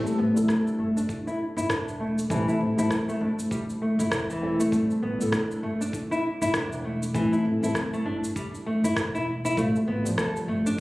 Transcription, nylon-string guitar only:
0.18 0.35 B3 medium
0.49 0.78 D4 medium
0.79 0.96 A3 medium
0.97 1.08 D4 medium
1.27 1.39 E4 loud
1.57 1.69 E4 medium
1.70 1.99 D4 medium
2.00 2.17 A3 medium
2.30 2.46 E3 loud
2.48 2.60 E4 medium
2.79 2.90 E4 medium
3.09 3.20 A3 medium
3.21 3.31 D4 medium
3.51 3.62 G3 medium
3.82 3.99 A3 medium
3.99 4.28 E4 medium
4.30 4.58 E3 medium
4.60 4.71 A3 medium
4.72 4.89 A3 loud
5.03 5.20 B3 medium
5.33 5.62 D4 medium
5.63 5.80 A3 medium
5.81 5.93 D4 medium
6.11 6.23 E4 loud
6.42 6.54 E4 loud
6.54 6.83 D4 medium
6.84 7.02 A3 medium
7.14 7.31 E3 loud
7.32 7.44 E4 medium
7.63 7.75 E4 medium
7.93 8.05 A3 medium
8.06 8.16 D4 medium
8.36 8.46 G3 medium
8.66 8.83 A3 medium
8.84 8.96 E4 medium
9.15 9.26 E4 medium
9.45 9.56 E4 medium
9.57 9.74 A3 loud
9.88 10.05 B3 medium
10.18 10.35 A4 medium
10.48 10.65 A3 medium
10.66 10.78 D4 medium

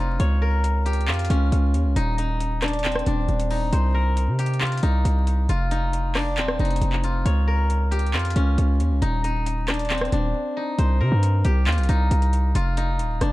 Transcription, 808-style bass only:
0.00 0.18 F1 loud
0.20 1.09 C#2 loud
1.08 1.29 F2 loud
1.30 1.51 C#2 loud
1.52 1.76 C#2 loud
1.74 1.87 D#2 loud
1.85 1.96 C#2 loud
1.96 3.03 D#1 loud
3.07 3.28 D#1 loud
3.29 3.71 D#1 loud
3.73 4.29 C2 loud
4.28 4.80 C3 loud
4.83 5.04 C2 loud
5.05 5.47 C2 loud
5.49 6.39 F1 loud
6.37 6.58 D#1 loud
6.59 6.81 F1 loud
6.81 7.24 F1 loud
7.26 8.15 C#2 loud
8.14 8.35 F2 loud
8.36 8.57 C#2 loud
8.58 8.82 C#2 loud
8.80 8.93 D#2 loud
8.91 9.02 C#2 loud
9.02 10.08 D#1 loud
10.12 10.34 D#1 loud
10.79 11.02 C2 loud
11.01 11.11 C3 loud
11.12 11.43 G2 loud
11.45 11.68 C2 loud
11.67 11.79 D#2 loud
11.78 11.88 C2 loud
11.89 12.10 C2 loud
12.11 12.53 C2 loud
12.55 13.01 F1 loud
12.99 13.20 D#1 loud
13.21 13.32 F1 loud

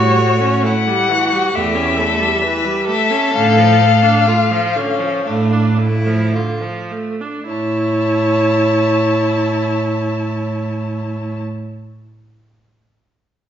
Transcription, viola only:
0.00 0.18 G3 medium
0.16 0.42 A3 medium
0.40 0.65 C#4 medium
0.64 0.89 A3 medium
0.87 1.11 G3 medium
1.09 1.34 E3 medium
1.32 1.53 G3 medium
1.54 1.77 A3 medium
1.75 1.99 C#4 medium
1.97 2.21 A3 medium
2.20 2.44 G3 medium
2.43 2.66 E3 medium
2.65 2.89 G3 medium
2.88 3.12 A3 medium
3.11 3.34 C#4 medium
3.34 3.59 D3 loud
3.58 3.82 F3 medium
3.80 4.04 A3 medium
4.03 4.28 D4 medium
4.27 4.53 A3 medium
4.52 4.77 F3 medium
4.76 5.01 D3 medium
5.00 5.26 F3 medium
5.27 5.54 A3 medium
5.53 5.80 D4 medium
5.78 6.08 A3 medium
6.07 6.35 F3 medium
6.33 6.63 D3 medium
6.62 6.93 F3 medium
6.92 7.23 A3 medium
7.21 7.46 D4 medium
7.46 11.41 E4 medium

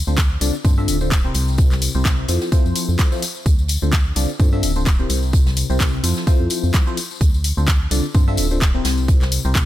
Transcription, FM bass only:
0.07 0.38 D2 medium
0.41 0.51 C2 loud
0.65 0.90 G2 loud
0.88 1.31 D1 medium
1.35 1.67 C2 medium
1.71 1.89 C2 medium
1.95 2.25 C2 medium
2.29 2.39 F2 loud
2.65 2.73 F2 medium
2.89 2.97 F2 medium
3.46 3.78 D2 loud
3.82 4.13 D2 medium
4.16 4.26 C2 loud
4.40 4.65 G2 medium
4.63 5.06 D1 medium
5.10 5.42 C2 medium
5.46 5.64 C2 medium
5.70 6.00 C2 medium
6.04 6.14 F2 loud
6.40 6.48 F2 medium
6.64 6.72 F2 loud
7.21 7.53 D2 medium
7.57 7.88 D2 medium
7.91 8.01 C2 loud
8.15 8.40 G2 medium
8.38 8.81 D1 medium
8.85 9.17 C2 medium
9.21 9.39 C2 medium
9.45 9.65 C2 medium

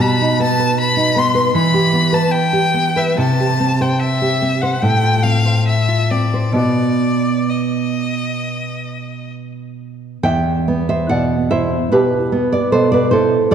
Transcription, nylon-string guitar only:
0.00 1.50 B2 medium
0.21 0.52 D#4 medium
0.40 0.71 B3 medium
0.59 1.20 B4 medium
0.97 1.28 D#4 medium
1.16 1.47 B3 medium
1.35 1.54 B4 medium
1.55 3.16 E3 medium
1.74 2.05 G4 soft
1.93 2.24 B3 medium
2.13 2.80 B4 medium
2.53 2.89 G4 medium
2.74 3.11 B3 medium
2.96 3.19 B4 medium
3.18 4.78 C3 medium
3.40 3.74 G4 medium
3.60 3.93 C4 medium
3.81 4.45 C5 medium
4.22 4.54 G4 medium
4.42 4.74 C4 medium
4.63 4.83 C5 soft
4.82 6.54 A2 medium
5.03 5.37 F4 soft
5.24 5.58 C4 soft
5.45 6.16 C5 soft
5.88 6.25 F4 soft
6.11 6.48 C4 soft
6.34 6.58 C5 medium
6.52 10.17 B2 medium
6.52 10.17 B3 soft
6.52 10.18 F#4 soft
10.23 11.88 E2 medium
10.23 10.85 E5 medium
10.23 10.86 G5 loud
10.68 11.35 B3 medium
10.89 11.09 C5 medium
10.89 11.10 E5 loud
11.09 11.76 B2 medium
11.09 11.49 D5 medium
11.09 11.50 F#5 loud
11.51 12.16 E4 medium
11.51 11.89 C5 medium
11.51 11.90 E5 medium
11.92 12.56 B2 medium
11.92 12.49 G4 medium
11.92 12.50 B4 loud
12.32 12.97 B3 medium
12.52 12.72 B4 medium
12.52 12.72 D5 medium
12.72 13.37 B2 medium
12.72 12.91 A4 medium
12.72 12.91 C5 loud
12.92 13.12 B4 medium
12.92 13.11 D5 medium
13.11 13.53 E4 medium
13.11 13.50 A4 medium
13.11 13.51 C5 medium
13.51 13.55 F#2 loud
13.51 13.55 D5 loud

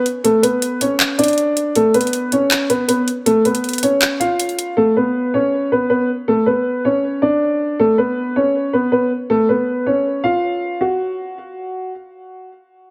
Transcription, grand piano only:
0.24 0.42 A3 medium
0.24 0.41 A4 loud
0.43 0.79 B3 medium
0.43 0.78 B4 medium
0.81 1.17 C#4 medium
0.81 1.17 C#5 medium
1.18 1.72 D4 medium
1.18 1.72 D5 medium
1.76 1.93 A3 medium
1.76 1.93 A4 loud
1.94 2.30 B3 medium
1.94 2.30 B4 medium
2.32 2.68 C#4 medium
2.32 2.68 C#5 medium
2.70 2.87 B3 medium
2.70 2.87 B4 medium
2.88 3.06 B3 medium
2.88 3.05 B4 medium
3.26 3.44 A3 medium
3.26 3.43 A4 loud
3.45 3.81 B3 medium
3.45 3.81 B4 medium
3.83 4.19 C#4 medium
3.83 4.18 C#5 medium
4.20 4.74 F4 medium
4.20 4.73 F5 medium
4.77 4.94 A3 medium
4.77 4.94 A4 loud
4.97 5.32 B3 medium
4.97 5.32 B4 medium
5.34 5.70 C#4 medium
5.34 5.69 C#5 medium
5.72 5.89 B3 medium
5.72 5.88 B4 medium
5.90 6.07 B3 medium
5.90 6.07 B4 medium
6.28 6.45 A3 medium
6.28 6.45 A4 loud
6.46 6.83 B3 medium
6.46 6.82 B4 medium
6.85 7.21 C#4 medium
6.85 7.20 C#5 medium
7.22 7.76 D4 medium
7.22 7.75 D5 medium
7.80 7.97 A3 medium
7.80 7.96 A4 loud
7.98 8.34 B3 medium
7.98 8.34 B4 medium
8.36 8.72 C#4 medium
8.36 8.71 C#5 medium
8.73 8.91 B3 medium
8.73 8.90 B4 medium
8.92 9.09 B3 medium
8.92 9.09 B4 medium
9.30 9.47 A3 medium
9.30 9.47 A4 loud
9.49 9.85 B3 medium
9.49 9.84 B4 medium
9.86 10.22 C#4 medium
9.86 10.22 C#5 medium
10.24 10.78 F4 medium
10.24 10.77 F5 medium
10.81 11.90 F#4 medium

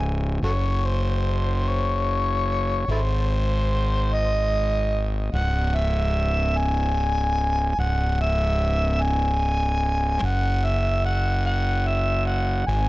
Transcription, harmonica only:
0.44 0.52 F#4 soft
0.44 0.51 A4 soft
0.44 0.87 C#5 medium
0.86 1.70 C5 medium
1.68 2.90 C#5 medium
2.91 3.00 E4 medium
2.91 3.00 A4 medium
2.91 4.15 C5 medium
4.14 5.05 D#5 medium
5.35 5.77 F#5 medium
5.76 6.59 E5 medium
6.57 7.79 G#5 medium
7.80 8.17 F#5 medium
8.21 9.03 E5 medium
9.01 10.26 G#5 medium
10.25 10.66 F#5 medium
10.65 11.05 E5 medium
11.05 11.43 F#5 medium
11.46 11.89 F#5 medium
11.87 12.26 E5 medium
12.26 12.64 F#5 medium
12.67 12.89 G#5 medium

